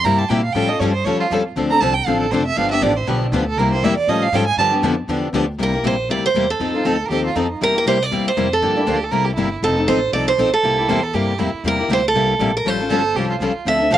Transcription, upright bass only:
0.05 0.29 G2 medium
0.30 0.54 A#2 loud
0.55 0.79 A2 medium
0.80 1.04 G2 medium
1.05 1.18 D#2 medium
1.20 muted upright bass stroke soft
1.30 1.55 F2 medium
1.56 1.80 D2 medium
1.81 2.05 C2 medium
2.06 2.31 A1 medium
2.32 2.56 F1 medium
2.57 2.81 G1 medium
2.82 3.06 A1 medium
3.07 3.31 B1 medium
3.32 3.57 D2 loud
3.57 3.82 C2 medium
3.83 4.07 E2 loud
4.07 4.31 A2 medium
4.32 4.56 G#2 medium
4.57 4.82 G2 medium
4.82 5.07 F2 loud
5.08 5.32 E2 medium
5.33 5.58 D2 medium
5.58 5.83 C2 medium
5.83 6.08 A#1 medium
6.09 6.34 D2 medium
6.34 6.59 E2 medium
6.60 6.84 F2 medium
6.85 7.09 D2 medium
7.09 7.34 D#2 medium
7.35 7.60 F2 medium
7.61 7.85 E2 medium
7.86 8.10 C2 medium
8.11 8.25 E2 medium
8.26 muted upright bass stroke soft
8.37 8.61 F2 medium
8.62 8.86 G2 medium
8.87 9.11 D2 medium
9.12 9.37 C2 medium
9.37 9.62 G1 medium
9.62 9.86 F1 medium
9.87 10.12 A1 medium
10.13 10.37 C2 medium
10.38 10.52 A#1 medium
10.63 10.88 C2 medium
10.88 11.13 E2 loud
11.14 11.38 G2 medium
11.39 11.52 F2 medium
11.53 muted upright bass stroke soft
11.64 11.88 E2 medium
11.88 12.13 D2 medium
12.13 12.38 C2 medium
12.39 12.64 A#1 medium
12.65 12.89 A1 medium
12.90 13.14 G1 medium
13.15 13.39 C2 medium
13.40 13.54 C#2 medium
13.65 13.90 D2 medium
13.91 13.98 C2 medium

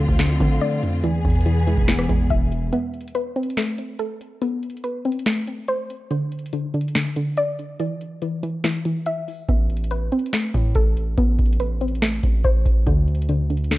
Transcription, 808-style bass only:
0.08 0.39 D2 loud
0.40 0.84 D3 loud
0.82 1.03 F2 loud
1.25 1.75 E2 loud
1.77 2.08 E1 loud
2.09 2.29 E2 loud
2.30 2.71 E1 loud
9.49 10.09 A1 loud
10.54 10.75 A2 loud
10.75 11.16 A1 loud
11.18 11.38 A1 loud
11.39 12.20 A1 loud
12.23 12.44 A1 loud
12.44 12.65 A1 loud
12.65 12.86 A1 loud
12.87 13.78 D2 loud

